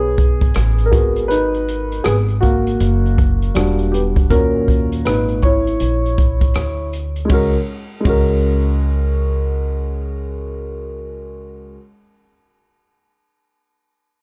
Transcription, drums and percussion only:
0.18 kick medium
0.18 closed hi-hat medium
0.41 kick medium
0.41 closed hi-hat soft
0.54 cross-stick medium
0.54 closed hi-hat medium
0.78 closed hi-hat soft
0.93 kick loud
0.93 closed hi-hat medium
1.16 closed hi-hat soft
1.31 closed hi-hat medium
1.54 closed hi-hat soft
1.68 closed hi-hat medium
1.92 closed hi-hat soft
2.04 cross-stick loud
2.04 closed hi-hat medium
2.28 closed hi-hat soft
2.42 kick medium
2.42 closed hi-hat medium
2.67 closed hi-hat medium
2.80 closed hi-hat medium
3.06 closed hi-hat soft
3.18 kick medium
3.18 closed hi-hat medium
3.42 closed hi-hat soft
3.55 cross-stick medium
3.55 closed hi-hat medium
3.79 closed hi-hat soft
3.94 closed hi-hat medium
4.16 kick medium
4.16 closed hi-hat soft
4.30 kick loud
4.30 closed hi-hat medium
4.68 kick medium
4.68 closed hi-hat medium
4.92 closed hi-hat soft
5.05 cross-stick medium
5.05 closed hi-hat medium
5.29 closed hi-hat soft
5.42 kick medium
5.42 closed hi-hat soft
5.67 closed hi-hat soft
5.80 closed hi-hat medium
6.06 closed hi-hat soft
6.18 kick medium
6.18 closed hi-hat medium
6.41 kick medium
6.41 closed hi-hat soft
6.54 cross-stick medium
6.54 closed hi-hat medium
6.93 closed hi-hat medium
7.16 closed hi-hat soft
7.29 kick medium
7.29 ride medium
8.05 kick medium
8.05 ride medium

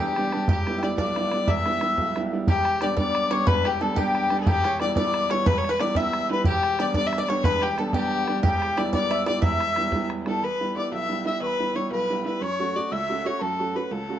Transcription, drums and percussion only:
0.16 bodhran medium
0.32 bodhran medium
0.48 bodhran loud
0.67 bodhran medium
0.83 bodhran medium
0.98 bodhran medium
1.16 bodhran medium
1.32 bodhran medium
1.48 bodhran medium
1.66 bodhran medium
1.81 bodhran medium
1.98 bodhran medium
2.16 bodhran medium
2.47 bodhran loud
2.65 bodhran medium
2.81 bodhran medium
2.97 bodhran medium
3.15 bodhran medium
3.31 bodhran medium
3.47 bodhran loud
3.65 bodhran medium
3.97 bodhran medium
4.15 bodhran medium
4.30 bodhran medium
4.46 bodhran loud
4.64 bodhran medium
4.80 bodhran medium
4.96 bodhran medium
5.14 bodhran medium
5.30 bodhran medium
5.46 bodhran loud
5.64 bodhran medium
5.80 bodhran medium
5.95 bodhran medium
6.13 bodhran medium
6.44 bodhran loud
6.63 bodhran medium
6.79 bodhran medium
6.94 bodhran medium
7.13 bodhran medium
7.29 bodhran soft
7.44 bodhran medium
7.62 bodhran medium
7.78 bodhran medium
7.93 bodhran medium
8.28 bodhran medium
8.44 bodhran medium
8.62 bodhran medium
8.78 bodhran medium
8.93 bodhran medium
9.11 bodhran medium
9.27 bodhran medium
9.42 bodhran medium
9.60 bodhran medium
9.76 bodhran medium
9.92 bodhran medium
10.10 bodhran medium
10.26 bodhran medium

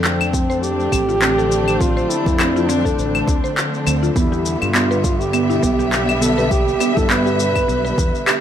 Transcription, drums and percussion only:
0.04 clap loud
0.04 shaker soft
0.21 claves medium
0.21 shaker soft
0.33 kick loud
0.33 shaker medium
0.51 shaker soft
0.63 shaker soft
0.80 shaker soft
0.92 kick medium
0.92 claves medium
0.92 shaker medium
1.09 shaker soft
1.22 clap loud
1.22 shaker soft
1.39 shaker soft
1.52 shaker medium
1.68 claves medium
1.68 shaker soft
1.81 kick loud
1.81 shaker soft
1.98 shaker soft
2.11 shaker medium
2.26 kick loud
2.26 shaker soft
2.40 clap loud
2.40 claves medium
2.40 shaker soft
2.57 shaker soft
2.69 shaker medium
2.85 kick medium
2.85 shaker soft
2.99 shaker soft
3.15 claves medium
3.15 shaker soft
3.28 kick loud
3.28 shaker medium
3.45 shaker soft
3.57 clap loud
3.57 shaker soft
3.74 shaker soft
3.87 claves medium
3.87 shaker medium
4.03 shaker soft
4.16 kick loud
4.16 shaker soft
4.33 shaker soft
4.46 shaker medium
4.62 claves medium
4.62 shaker soft
4.75 clap medium
4.75 shaker soft
4.92 shaker soft
5.04 kick loud
5.04 shaker medium
5.21 shaker soft
5.33 claves medium
5.33 shaker soft
5.50 shaker soft
5.63 kick medium
5.63 shaker medium
5.80 shaker soft
5.92 clap medium
5.92 shaker soft
6.09 claves medium
6.09 shaker soft
6.22 shaker medium
6.39 shaker soft
6.51 kick loud
6.51 shaker soft
6.68 shaker soft
6.80 claves medium
6.80 shaker medium
6.97 kick loud
6.97 shaker soft
7.10 clap medium
7.10 shaker soft
7.27 shaker soft
7.40 shaker medium
7.56 kick medium
7.56 claves medium
7.56 shaker soft
7.69 shaker soft
7.86 shaker soft
7.98 kick loud
7.98 shaker medium
8.15 shaker soft
8.28 clap medium
8.28 claves medium
8.28 shaker soft

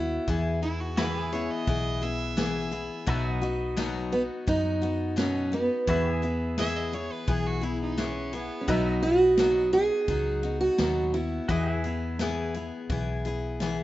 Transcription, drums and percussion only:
0.28 kick loud
0.28 ride medium
0.63 ride medium
0.97 snare loud
0.97 ride medium
1.33 ride medium
1.67 kick loud
1.67 ride medium
2.02 ride medium
2.37 snare loud
2.37 ride medium
2.72 ride medium
3.07 kick loud
3.07 ride medium
3.43 ride medium
3.77 snare loud
3.77 ride medium
4.12 ride medium
4.48 kick loud
4.48 ride medium
4.83 ride medium
5.18 snare loud
5.18 ride medium
5.53 ride medium
5.87 kick loud
5.87 ride medium
6.23 ride medium
6.58 snare loud
6.58 ride medium
6.93 ride medium
7.28 kick loud
7.28 ride medium
7.63 ride medium
7.98 snare loud
7.98 ride medium
8.33 ride medium
8.68 kick loud
8.68 ride medium
9.03 ride medium
9.37 snare loud
9.37 ride loud
9.73 ride medium
10.08 kick loud
10.08 ride medium
10.43 ride medium
10.78 snare loud
10.78 ride medium
11.14 ride medium
11.49 kick loud
11.49 ride medium
11.84 ride medium
12.19 snare loud
12.19 ride medium
12.54 ride medium
12.90 kick loud
12.90 ride medium
13.25 ride medium
13.60 snare loud
13.60 ride medium

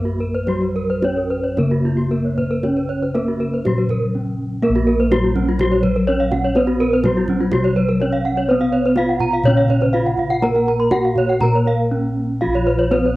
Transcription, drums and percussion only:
0.19 kendang slap soft
0.47 kendang high soft
0.61 kendang slap soft
1.03 kendang high soft
1.44 kendang slap soft
1.57 kendang high soft
1.57 kendang low soft
1.71 kendang slap soft
2.38 kendang slap soft
2.38 kendang low soft
2.63 kendang high soft
2.77 kendang slap soft
3.03 kendang slap soft
3.15 kendang high soft
3.41 kendang slap soft
3.65 kendang high soft
3.65 kendang low soft
3.77 kendang slap soft
3.89 kendang slap soft
3.89 kendang low soft
4.76 kendang slap soft
5.12 kendang slap soft
5.12 kendang high medium
5.36 kendang low medium
5.59 kendang low medium
5.72 kendang slap soft
5.83 kendang slap soft
5.83 kendang low medium
5.96 kendang slap soft
6.08 kendang slap soft
6.31 kendang high medium
6.31 kendang low medium
6.43 kendang slap soft
6.55 kendang high soft
6.67 kendang slap soft
7.04 kendang slap soft
7.04 kendang high medium
7.04 kendang low medium
7.28 kendang low medium
7.51 kendang high soft
7.51 kendang low medium
7.64 kendang slap soft
7.77 kendang slap soft
7.89 kendang slap soft
8.00 kendang slap soft
8.37 kendang slap soft
8.60 kendang slap soft
8.96 kendang slap soft
8.96 kendang high medium
9.20 kendang low medium
9.44 kendang low medium
9.56 kendang slap soft
9.68 kendang slap soft
9.68 kendang low medium
9.81 kendang slap soft
9.94 kendang slap soft
10.17 kendang low soft
10.30 kendang slap soft
10.42 kendang high medium
10.55 kendang slap soft
10.67 kendang slap soft
10.91 kendang slap soft
10.91 kendang high medium
10.91 kendang low medium
11.15 kendang slap soft
11.15 kendang low medium
11.40 kendang high soft
11.40 kendang low medium
11.53 kendang slap soft
11.65 kendang slap soft
12.54 kendang slap soft
12.91 kendang high medium
13.04 kendang slap soft

